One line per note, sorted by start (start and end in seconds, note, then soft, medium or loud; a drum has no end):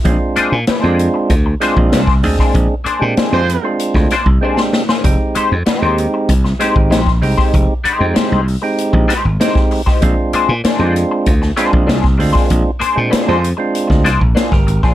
0.04 0.17 A#1 medium
0.04 0.56 G#3 medium
0.04 0.57 C4 medium
0.04 0.12 C#4 medium
0.04 0.57 F4 medium
0.04 kick loud
0.04 closed hi-hat medium
0.12 0.60 D4 medium
0.36 0.53 A#3 medium
0.36 0.53 D4 medium
0.36 0.54 G#4 loud
0.36 0.54 C5 medium
0.36 muted slap bass stroke soft
0.36 closed hi-hat medium
0.52 0.64 A#2 loud
0.67 0.79 A3 medium
0.67 0.80 C#4 medium
0.67 0.81 G4 medium
0.67 0.81 B4 medium
0.67 muted slap bass stroke soft
0.67 snare loud
0.67 closed hi-hat medium
0.79 1.34 G#3 loud
0.79 0.96 A#3 medium
0.79 1.34 C4 medium
0.79 0.97 D4 medium
0.79 1.35 D4 medium
0.79 0.97 G#4 medium
0.79 0.97 C5 medium
0.83 1.07 F2 medium
0.83 1.35 F4 loud
0.99 muted clean electric guitar stroke soft
0.99 closed hi-hat medium
1.14 muted clean electric guitar stroke soft
1.30 1.53 D2 medium
1.30 kick medium
1.30 closed hi-hat medium
1.46 muted clean electric guitar stroke soft
1.60 2.02 G#3 loud
1.60 1.78 A#3 medium
1.60 2.02 C4 medium
1.60 2.03 D4 medium
1.60 1.76 D4 medium
1.60 2.03 F4 loud
1.60 1.76 G#4 medium
1.60 1.76 C5 medium
1.60 snare soft
1.60 closed hi-hat medium
1.77 1.89 A#1 loud
1.77 kick medium
1.92 2.23 C2 medium
1.92 2.13 A#3 medium
1.92 2.13 D4 medium
1.92 2.13 G#4 medium
1.92 2.13 C5 medium
1.92 snare loud
1.92 closed hi-hat loud
2.07 kick loud
2.07 snare soft
2.23 2.35 D2 loud
2.23 2.75 G#3 medium
2.23 2.75 C4 medium
2.23 2.75 D4 medium
2.23 2.76 G#4 loud
2.23 muted clean electric guitar stroke soft
2.23 open hi-hat medium
2.39 2.54 A#3 medium
2.39 2.53 D4 medium
2.39 2.53 G#4 medium
2.39 2.53 C5 medium
2.39 kick medium
2.39 snare soft
2.55 2.67 A#1 loud
2.55 kick loud
2.55 closed hi-hat medium
2.84 3.02 A#3 medium
2.84 3.03 D4 medium
2.84 3.03 G#4 medium
2.84 3.03 C5 medium
2.84 muted slap bass stroke soft
2.84 closed hi-hat medium
2.99 3.13 A#2 loud
2.99 3.42 G#3 medium
2.99 3.42 C4 medium
2.99 3.43 D4 medium
2.99 3.43 G4 medium
3.17 3.46 A#3 medium
3.17 3.46 D4 medium
3.17 3.47 G#4 medium
3.17 3.47 C5 medium
3.17 muted slap bass stroke soft
3.17 snare loud
3.17 closed hi-hat medium
3.33 3.56 F2 medium
3.33 3.73 G#3 loud
3.33 3.73 C4 loud
3.33 3.73 F4 loud
3.33 3.73 C5 loud
3.49 muted clean electric guitar stroke soft
3.49 closed hi-hat medium
3.63 4.15 G#3 medium
3.63 4.15 C4 medium
3.63 4.16 D4 medium
3.63 4.16 F4 medium
3.63 muted clean electric guitar stroke soft
3.79 closed hi-hat medium
3.94 4.07 D2 medium
3.94 muted clean electric guitar stroke soft
3.94 kick medium
3.94 snare soft
4.10 4.28 A#3 medium
4.10 4.28 D4 medium
4.10 4.28 G#4 medium
4.10 4.27 C5 medium
4.10 snare soft
4.10 closed hi-hat medium
4.26 4.38 C2 medium
4.26 muted clean electric guitar stroke soft
4.26 kick loud
4.41 4.83 G#3 medium
4.41 4.59 A#3 medium
4.41 4.83 C4 medium
4.41 4.83 D4 medium
4.41 4.59 D4 medium
4.41 4.84 G4 medium
4.41 4.60 G#4 loud
4.41 4.60 C5 medium
4.57 snare medium
4.73 muted clean electric guitar stroke soft
4.73 snare medium
4.89 5.03 A#3 medium
4.89 5.03 D4 medium
4.89 5.03 G#4 medium
4.89 5.02 C5 medium
4.89 snare medium
5.03 5.16 F1 loud
5.03 5.10 G3 medium
5.03 5.56 C4 medium
5.03 5.56 D#4 medium
5.03 5.56 G4 medium
5.03 kick loud
5.03 closed hi-hat medium
5.10 5.59 G#3 medium
5.35 5.52 G#3 medium
5.35 5.53 D#4 medium
5.35 5.53 G4 medium
5.35 5.53 C5 medium
5.35 muted slap bass stroke soft
5.35 closed hi-hat medium
5.52 5.63 F2 loud
5.66 5.78 G3 medium
5.66 5.79 D4 medium
5.66 5.79 F#4 medium
5.66 5.80 B4 loud
5.66 muted slap bass stroke soft
5.66 snare loud
5.66 closed hi-hat medium
5.78 5.95 G#3 medium
5.78 6.33 G#3 loud
5.78 5.95 D#4 medium
5.78 5.95 G4 medium
5.78 5.96 C5 loud
5.82 6.06 D#2 medium
5.82 6.34 C4 medium
5.82 6.34 D#4 medium
5.82 6.34 G4 loud
5.98 muted clean electric guitar stroke soft
5.98 closed hi-hat medium
6.14 muted clean electric guitar stroke medium
6.29 6.52 C2 loud
6.29 muted clean electric guitar stroke soft
6.29 kick loud
6.29 closed hi-hat loud
6.44 muted clean electric guitar stroke soft
6.44 snare soft
6.59 7.01 G#3 medium
6.59 6.77 G#3 medium
6.59 7.01 C4 medium
6.59 6.75 D#4 medium
6.59 7.01 D#4 medium
6.59 7.02 G4 loud
6.59 6.75 G4 medium
6.59 6.74 C5 medium
6.59 snare soft
6.59 closed hi-hat medium
6.76 6.90 G#1 medium
6.76 muted clean electric guitar stroke medium
6.76 kick medium
6.90 7.22 A#1 medium
6.90 7.07 G#3 medium
6.90 7.08 D#4 medium
6.90 7.08 G4 medium
6.90 7.09 C5 medium
6.90 snare loud
6.90 closed hi-hat loud
7.07 kick loud
7.07 snare soft
7.22 7.34 C2 loud
7.22 7.73 G#3 medium
7.22 7.74 C4 medium
7.22 7.74 D#4 medium
7.22 7.74 G4 loud
7.22 muted clean electric guitar stroke soft
7.22 open hi-hat medium
7.37 7.51 G#3 medium
7.37 7.51 D#4 medium
7.37 7.51 G4 medium
7.37 7.51 C5 medium
7.37 kick medium
7.37 snare soft
7.54 7.65 F1 loud
7.54 kick loud
7.54 closed hi-hat loud
7.84 8.04 G#3 medium
7.84 8.05 D#4 medium
7.84 8.05 G4 medium
7.84 8.05 C5 medium
7.84 muted slap bass stroke soft
7.84 closed hi-hat medium
7.99 8.12 F2 loud
7.99 8.41 G#3 medium
7.99 8.41 C4 medium
7.99 8.41 D#4 medium
7.99 8.42 G4 loud
8.13 8.43 G#3 medium
8.13 8.44 D#4 medium
8.13 8.44 G4 medium
8.13 8.44 C5 medium
8.13 muted slap bass stroke soft
8.13 snare loud
8.13 closed hi-hat medium
8.32 8.55 C2 medium
8.46 muted clean electric guitar stroke soft
8.46 open hi-hat soft
8.62 9.14 G#3 medium
8.62 9.14 C4 medium
8.62 9.14 D#4 medium
8.62 9.15 G4 loud
8.62 muted clean electric guitar stroke soft
8.78 closed hi-hat medium
8.93 9.05 A#1 medium
8.93 muted clean electric guitar stroke soft
8.93 kick medium
9.08 9.29 G#3 medium
9.08 9.24 D#4 medium
9.08 9.24 G4 loud
9.08 9.23 C5 medium
9.08 snare soft
9.08 closed hi-hat medium
9.25 9.37 G#1 medium
9.25 muted clean electric guitar stroke soft
9.40 9.57 G#3 medium
9.40 9.81 G#3 medium
9.40 9.82 C4 medium
9.40 9.57 D#4 medium
9.40 9.82 D#4 medium
9.40 9.57 G4 loud
9.40 9.82 G4 loud
9.40 9.57 C5 loud
9.40 snare loud
9.40 closed hi-hat loud
9.55 kick loud
9.55 snare soft
9.71 muted clean electric guitar stroke soft
9.71 open hi-hat medium
9.86 10.00 G#3 soft
9.86 10.00 D#4 medium
9.86 10.00 G4 medium
9.86 10.00 C5 medium
9.86 kick medium
9.86 snare soft
10.01 10.14 A#1 loud
10.01 10.53 G#3 medium
10.01 10.53 C4 medium
10.01 10.54 D4 medium
10.01 10.54 F4 medium
10.01 kick loud
10.01 closed hi-hat medium
10.33 10.50 A#3 medium
10.33 10.50 D4 medium
10.33 10.51 G#4 medium
10.33 10.51 C5 medium
10.33 muted slap bass stroke soft
10.33 closed hi-hat medium
10.49 10.61 A#2 loud
10.64 10.93 A#3 medium
10.64 10.93 D4 medium
10.64 10.93 G#4 medium
10.64 10.94 C5 loud
10.64 muted slap bass stroke soft
10.64 snare loud
10.64 closed hi-hat medium
10.79 11.03 F2 medium
10.79 11.31 G#3 medium
10.79 11.31 C4 medium
10.79 11.31 D4 medium
10.79 10.87 D#4 medium
10.87 11.35 F4 loud
10.96 muted clean electric guitar stroke soft
10.96 closed hi-hat medium
11.11 muted clean electric guitar stroke medium
11.26 11.50 D2 loud
11.26 kick medium
11.26 closed hi-hat medium
11.42 muted clean electric guitar stroke soft
11.42 snare soft
11.57 11.98 G#3 loud
11.57 11.77 A#3 medium
11.57 11.98 C4 medium
11.57 11.72 D4 medium
11.57 11.99 D4 medium
11.57 11.99 F4 loud
11.57 11.72 G#4 loud
11.57 11.71 C5 medium
11.57 snare soft
11.57 closed hi-hat medium
11.72 11.85 A#1 medium
11.72 muted clean electric guitar stroke medium
11.72 kick medium
11.87 12.20 C2 medium
11.87 12.04 A#3 medium
11.87 12.04 D4 medium
11.87 12.05 G#4 medium
11.87 12.05 C5 medium
11.87 snare loud
11.87 closed hi-hat loud
12.04 kick loud
12.04 snare soft
12.18 12.31 D2 medium
12.18 12.70 G#3 medium
12.18 12.71 C4 medium
12.18 12.71 D4 medium
12.18 12.71 F4 loud
12.18 muted clean electric guitar stroke soft
12.18 open hi-hat medium
12.33 12.48 A#3 soft
12.33 12.47 D4 medium
12.33 12.47 G#4 medium
12.33 12.47 C5 medium
12.33 kick medium
12.33 snare soft
12.50 12.62 A#1 loud
12.50 kick loud
12.50 closed hi-hat medium
12.80 12.97 A#3 medium
12.80 12.98 D4 medium
12.80 12.98 G#4 medium
12.80 12.98 C5 medium
12.80 muted slap bass stroke soft
12.80 closed hi-hat medium
12.95 13.09 A#2 medium
12.95 13.37 G#3 medium
12.95 13.38 C4 medium
12.95 13.38 D4 medium
12.95 13.38 F4 medium
13.10 13.23 A3 medium
13.10 13.23 C#4 loud
13.10 13.23 G4 medium
13.10 13.23 B4 loud
13.10 muted slap bass stroke soft
13.10 snare loud
13.10 closed hi-hat medium
13.23 13.40 A#3 medium
13.23 13.40 D4 loud
13.23 13.41 G#4 medium
13.23 13.41 C5 loud
13.28 13.52 F2 medium
13.28 13.48 G#3 loud
13.28 13.48 C4 loud
13.28 13.48 F4 medium
13.28 13.48 C5 loud
13.41 muted clean electric guitar stroke soft
13.41 closed hi-hat medium
13.57 14.10 G#3 medium
13.57 14.10 C4 medium
13.57 14.11 D4 medium
13.57 14.11 F4 loud
13.57 muted clean electric guitar stroke soft
13.75 closed hi-hat medium
13.87 14.06 D2 medium
13.87 muted clean electric guitar stroke soft
13.87 kick medium
13.87 snare soft
14.05 14.18 C2 medium
14.05 14.22 A#3 medium
14.05 14.21 D4 medium
14.05 14.20 G#4 medium
14.05 14.19 C5 medium
14.05 snare soft
14.05 closed hi-hat medium
14.21 14.33 A#1 medium
14.21 muted clean electric guitar stroke soft
14.21 kick medium
14.35 14.53 A#3 medium
14.35 14.53 D4 medium
14.35 14.52 D4 medium
14.35 14.52 F4 medium
14.35 14.53 G#4 medium
14.35 14.53 C5 medium
14.35 snare loud
14.35 closed hi-hat loud
14.52 14.64 G1 medium
14.52 14.82 G4 medium
14.52 14.82 A#4 medium
14.52 kick loud
14.52 snare soft
14.67 14.80 G#1 medium
14.67 muted clean electric guitar stroke soft
14.67 closed hi-hat medium
14.83 14.94 A#1 medium
14.83 14.94 A#3 medium
14.83 14.94 D4 medium
14.83 14.94 F4 medium
14.83 14.94 G#4 medium
14.83 14.94 C5 medium
14.83 kick medium
14.83 snare soft